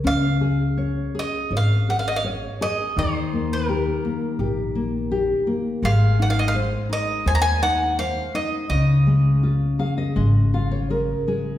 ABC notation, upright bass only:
X:1
M:4/4
L:1/8
Q:1/4=83
K:Db
V:1 name="Upright bass" clef=bass
D,,4 A,,,4 | E,,4 B,,,4 | A,,,4 E,,4 | D,,4 A,,,4 |]